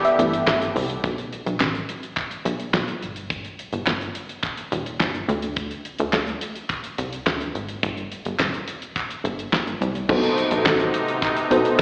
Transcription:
Already playing: E3 B3 G4 A4
0.05 E5, closed hi-hat
0.19 G1 E3 A3 B3, closed hi-hat
0.33 closed hi-hat
0.47 G1, kick, snare, clap
0.62 closed hi-hat
0.76 C2, open hi-hat
0.90 closed hi-hat
1.04 B1, kick, closed hi-hat
1.18 closed hi-hat
1.33 closed hi-hat
1.46 B1, closed hi-hat
1.60 A1, kick, snare, clap
1.75 closed hi-hat
1.89 closed hi-hat
2.03 closed hi-hat
2.17 kick, clap, closed hi-hat
2.31 closed hi-hat
2.45 B1, closed hi-hat
2.60 closed hi-hat
2.74 B1, kick, snare, clap
2.88 closed hi-hat
3.02 G1, closed hi-hat
3.16 closed hi-hat
3.30 kick, closed hi-hat
3.45 closed hi-hat
3.59 closed hi-hat
3.73 G1, closed hi-hat
3.87 G1, kick, snare, clap
4.01 closed hi-hat
4.15 closed hi-hat
4.29 closed hi-hat
4.43 kick, clap, closed hi-hat
4.57 closed hi-hat
4.72 E1, closed hi-hat
4.86 closed hi-hat
5.00 G1, kick, snare, clap
5.14 closed hi-hat
5.29 D2, closed hi-hat
5.42 closed hi-hat
5.56 kick, closed hi-hat
5.71 closed hi-hat
5.85 closed hi-hat
5.99 D2, closed hi-hat
6.13 D2, kick, snare, clap
6.27 closed hi-hat
6.41 closed hi-hat
6.55 closed hi-hat
6.69 kick, clap, closed hi-hat
6.84 closed hi-hat
6.98 C2, closed hi-hat
7.13 closed hi-hat
7.26 D2, kick, snare, clap
7.41 closed hi-hat
7.55 G#1, closed hi-hat
7.69 closed hi-hat
7.83 G1, kick, closed hi-hat
7.97 closed hi-hat
8.12 closed hi-hat
8.25 G1, closed hi-hat
8.39 E1, kick, snare, clap
8.54 closed hi-hat
8.68 closed hi-hat
8.82 closed hi-hat
8.96 kick, clap, closed hi-hat
9.10 closed hi-hat
9.24 G1, closed hi-hat
9.39 closed hi-hat
9.53 G1, kick, snare, clap
9.67 closed hi-hat
9.81 C2, closed hi-hat
9.95 closed hi-hat
10.09 B1 C3 A3 B3 D#4 F#4 A4 C5, kick, crash
10.23 closed hi-hat
10.38 closed hi-hat
10.51 B1, closed hi-hat
10.66 A1, kick, snare, clap
10.80 closed hi-hat
10.94 closed hi-hat
11.08 closed hi-hat
11.22 kick, clap, closed hi-hat
11.37 closed hi-hat
11.51 B1 B3 D#4 F#4 A4 C5, closed hi-hat
11.65 closed hi-hat

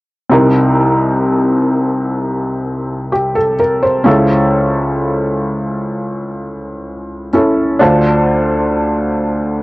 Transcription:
0.29 C2 C3 C4 D#4 A#4
3.12 G4
3.35 A4
3.60 A#4
3.83 C5
4.04 C#2 C#3 C#4 E4 A4
7.33 C#4 E4 A4
7.79 D2 D3 D4 F4 C5

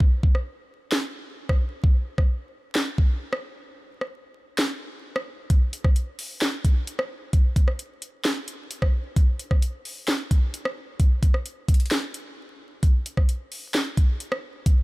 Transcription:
0.00 kick
0.23 kick
0.35 cross-stick
0.92 snare, clap
1.49 kick, cross-stick
1.84 kick
2.18 kick, cross-stick
2.75 snare, clap
2.98 kick
3.33 cross-stick
4.01 cross-stick
4.58 snare, clap
5.16 cross-stick
5.50 kick, closed hi-hat
5.73 closed hi-hat
5.84 kick, cross-stick
5.96 closed hi-hat
6.19 open hi-hat
6.41 snare, clap, closed hi-hat
6.65 kick, closed hi-hat
6.87 closed hi-hat
6.99 cross-stick
7.33 kick, closed hi-hat
7.56 kick, closed hi-hat
7.68 cross-stick
7.79 closed hi-hat
8.02 closed hi-hat
8.25 snare, clap, closed hi-hat
8.48 closed hi-hat
8.71 closed hi-hat
8.82 kick, cross-stick
9.16 kick, closed hi-hat
9.39 closed hi-hat
9.51 kick, cross-stick
9.62 closed hi-hat
9.85 open hi-hat
10.08 snare, clap, closed hi-hat
10.31 kick, closed hi-hat
10.54 closed hi-hat
10.65 cross-stick
11.00 kick, closed hi-hat
11.23 kick, closed hi-hat
11.34 cross-stick
11.46 closed hi-hat
11.68 kick, closed hi-hat, open hi-hat
11.74 closed hi-hat
11.80 closed hi-hat
11.86 closed hi-hat
11.91 snare, clap, closed hi-hat
12.14 closed hi-hat
12.83 kick, closed hi-hat
13.06 closed hi-hat
13.17 kick, cross-stick
13.29 closed hi-hat
13.52 open hi-hat
13.74 snare, clap, closed hi-hat
13.97 kick, closed hi-hat
14.20 closed hi-hat
14.32 cross-stick
14.66 kick, closed hi-hat

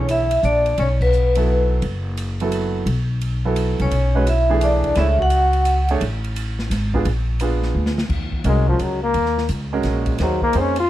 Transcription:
Already playing: B1 D3 E3 A3 G#4 C#5
0.08 E4 E5, hi-hat pedal, ride
0.31 ride
0.43 A#1 D4 D5, hi-hat pedal
0.66 ride
0.78 B1 C#4 C#5, ride
1.01 B3 B4, kick, crash
1.13 hi-hat pedal
1.35 F#3 B3 E4 A4, ride
1.82 F#1, ride
2.17 hi-hat pedal, ride
2.40 F#3 B3 E4 A4, ride
2.52 hi-hat pedal, ride
2.86 B1, ride
3.21 ride
3.45 F#3 B3 E4 A4
3.56 hi-hat pedal, ride
3.79 C2 C#4 C#5, ride
3.91 B1, ride
4.15 G#3 C#4 F#4 B4
4.27 E4 E5, hi-hat pedal, ride
4.50 E3 A3 D4 G#4
4.61 D4 D5, hi-hat pedal, ride
4.84 kick, ride
4.95 C#2 A3 D4 E4 G#4 C#5 E5, snare, ride
5.18 F#4 F#5, kick
5.30 hi-hat pedal, ride
5.53 ride
5.65 hi-hat pedal, ride
5.88 A3 D4 G#4 C#5, ride
6.01 A1, ride
6.24 ride
6.36 hi-hat pedal, ride
6.59 snare
6.70 G#1, snare, hi-hat pedal, ride
6.93 B3 D4 F4 G#4, kick
7.05 A#1, ride
7.40 B3 D4 F4 G#4, hi-hat pedal, ride
7.63 snare
7.75 D2
7.86 snare
7.98 snare
8.09 D#2, kick, crash
8.32 kick
8.44 C2 G#3 C#4 F#4 A#4, hi-hat pedal, ride
8.67 F3, kick
8.79 C#2 F#3, hi-hat pedal, ride
9.03 A#3
9.14 D#2, ride
9.26 snare
9.38 snare
9.49 C#2, hi-hat pedal, ride
9.73 G#3 C#4 F#4 A#4
9.83 A#1, snare, ride
10.06 kick, ride
10.18 D#2 A#3 D#4 G#4 C5, snare, ride
10.22 F#3
10.42 A#3, kick
10.53 F2 A#3 D#4 G#4 C5, hi-hat pedal, ride
10.59 C#4
10.76 F4, ride

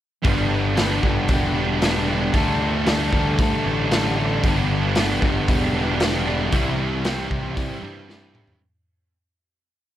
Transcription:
0.24 G1 G2 D3 G3 B3 D4 G4, kick, open hi-hat
0.49 G3 B3 D4
0.76 G2 D3 G3 B3 D4 G4, snare, open hi-hat
1.02 G1 G3 B3 D4 G4, kick
1.28 E1 G3 B3 D4, kick, open hi-hat
1.33 G4
1.53 G3 B3 D4
1.82 G2 D3 G3 B3 D4, snare, open hi-hat
1.86 G4
2.07 B3 D4 G4
2.11 G3
2.33 D2 D3 G3 A3 D4 A4, kick, open hi-hat
2.58 G3 A3 D4
2.85 D3 G3 A3 D4, snare, open hi-hat
2.90 A4
3.13 D2 D4 A4, kick
3.17 G3
3.38 D2 D3 G3 D4 A4, kick, open hi-hat
3.64 A1 G3 A3 D4
3.90 D3 G3 A3 D4 A4, snare, open hi-hat
4.17 G3 A3 D4 A4
4.44 G1 G2 D3 G3 B3 D4 G4, kick, open hi-hat
4.70 G3 B3 D4
4.95 G2 D3 G3 B3 D4 G4, snare, open hi-hat
5.22 G1 G3 B3 D4 G4, kick
5.48 E1 G3 B3 D4 G4, kick, open hi-hat
5.75 G3 B3 D4
6.00 G2 D3 G3 B3 D4 G4, snare, open hi-hat
6.25 G3 B3 D4 G4
6.52 C2 C3 E3 G3 C4 E4 G4, kick, open hi-hat
6.78 G3 C4 E4
7.04 C3 E3 G3 C4 E4 G4, snare, open hi-hat
7.29 C2 G3 E4 G4, kick
7.54 C2 E3 G3 E4 G4, kick, open hi-hat
7.83 G2 G3 C4 E4
8.07 C3 E3 G3 C4 E4 G4, snare
8.33 G3 C4 E4 G4, mid tom
8.47 floor tom

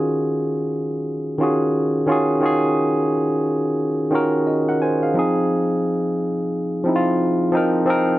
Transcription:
Already playing: D#3 C#4 F4 F#4 G#4
1.38 D#3 C#4 F4 F#4
1.43 G#4
2.07 D#3 C#4 F4 F#4
2.12 G#4
2.40 D#3 C#4 F4 F#4
2.45 G#4
4.10 D#3 C#4 F4 F#4
4.15 A#4
4.47 F#4 D#5
4.69 A#4 F#5
4.82 C5 G#5
5.03 G#4 F5
5.14 F3 C4 D#4
5.19 G#4
6.84 F3 C4 D#4
6.89 E4
6.96 F4
7.52 F3 C4 D#4
7.57 A#4
7.85 F3 C4 D#4
7.90 A#4

